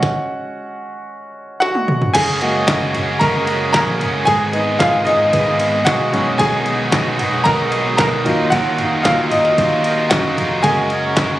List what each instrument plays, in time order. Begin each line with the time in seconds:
Already playing: grand piano G#3 C#4 F#4 F#5
0.03 kick, snare
1.60 grand piano F#4 F#5, snare
1.75 high tom
1.88 mid tom
2.02 floor tom
2.14 picked electric bass F#1, string section C#3 G#3 A#3 F#4, overdriven electric guitar F#3 A#3 C#4 F#4 G#4, grand piano G#4 G#5, kick, crash, ride
2.41 grand piano G#3 A#3 F#4, overdriven electric guitar C#4 F#4 G#4, ride
2.67 picked electric bass F#1, overdriven electric guitar F#3 A#3 C#4 F#4 G#4, kick, snare, clap, ride
2.94 overdriven electric guitar C#4 F#4 G#4, floor tom, ride
3.19 picked electric bass F#1, overdriven electric guitar A#3 C#4 F#4 G#4, grand piano A#4 A#5, kick, ride
3.46 overdriven electric guitar C#4 F#4 G#4, ride
3.73 picked electric bass A#1, overdriven electric guitar F#3 A#3 C#4 F#4 G#4, grand piano A#4 A#5, kick, snare, clap, ride
3.99 picked electric bass F#1, overdriven electric guitar C#4 F#4 G#4, floor tom, ride
4.25 picked electric bass G#1, overdriven electric guitar G#2 D#3 G#3 B3 D#4 G#4, string section D#3 B3 G#4, grand piano G#4 G#5, kick, ride
4.53 grand piano G#3 B3 D#4, overdriven electric guitar G#3 B3 D#4 G#4, ride
4.79 picked electric bass G#1, overdriven electric guitar G#2 D#3 G#3 B3 D#4 G#4, grand piano F4 F5, kick, snare, clap, ride
5.05 overdriven electric guitar G#3 B3 D#4 G#4, grand piano D#4 D#5, floor tom, ride
5.32 picked electric bass G#1, overdriven electric guitar G#3 B3 D#4 G#4, grand piano G#3 B3 D#4, kick, ride
5.59 overdriven electric guitar G#3 B3 D#4 G#4, ride
5.85 picked electric bass B1, overdriven electric guitar G#2 D#3 G#3 B3 D#4 G#4, grand piano F#4 F#5, kick, snare, clap, ride
6.12 picked electric bass B1, overdriven electric guitar F#3 B3 D#4 G#4, grand piano G#3 C#4 D#4, string section F#4, floor tom, ride
6.38 overdriven electric guitar B2 D#3 F#3 B3 D#4 G#4, grand piano G#4 G#5, kick, ride
6.65 overdriven electric guitar F#3 B3 D#4 G#4, ride
6.92 picked electric bass B1, overdriven electric guitar B2 D#3 F#3 B3 D#4 G#4, kick, snare, clap, ride
7.18 overdriven electric guitar F#3 B3 D#4 G#4, floor tom, ride
7.44 picked electric bass B1, overdriven electric guitar F#3 B3 D#4, grand piano A#4 A#5, kick, ride
7.48 overdriven electric guitar G#4
7.71 overdriven electric guitar F#3 B3 D#4 G#4, ride
7.97 picked electric bass B1, overdriven electric guitar B2 D#3 F#3 B3 D#4 G#4, grand piano A#4 A#5, kick, snare, clap, ride
8.24 picked electric bass D#2, grand piano F#3 D#4 F4, string section F#3 A#3 D#4, overdriven electric guitar D#4 F4 A#4, floor tom, ride
8.50 picked electric bass D#2, overdriven electric guitar D#3 F#3 D#4 F4 A#4, grand piano F#4 F#5, kick, ride
8.78 overdriven electric guitar D#4 F4 A#4, floor tom, ride
9.03 picked electric bass D#2, overdriven electric guitar D#3 F#3 D#4 F4 A#4, grand piano F4 F5, kick, snare, clap, ride
9.30 grand piano D#4 D#5, overdriven electric guitar F4 A#4, floor tom, ride
9.34 overdriven electric guitar D#4
9.45 snare
9.57 picked electric bass D#2, overdriven electric guitar F#3 D#4 F4 A#4, kick, ride
9.84 overdriven electric guitar D#4 F4 A#4, ride
10.09 picked electric bass F#2, overdriven electric guitar D#3 F#3 D#4 F4 A#4, grand piano F#4 F#5, kick, snare, clap, ride
10.36 picked electric bass F1, overdriven electric guitar D#4 F4 A#4, floor tom, ride
10.62 picked electric bass F#1, string section C#3 G#3 F#4, overdriven electric guitar F#3 G#3 C#4 F#4 A#4, grand piano G#3 A#3 F#4 G#4 G#5, kick, ride
10.90 overdriven electric guitar C#4 F#4 A#4, ride
11.17 picked electric bass F#1, overdriven electric guitar F#3 G#3 C#4 F#4 A#4, kick, snare, clap, ride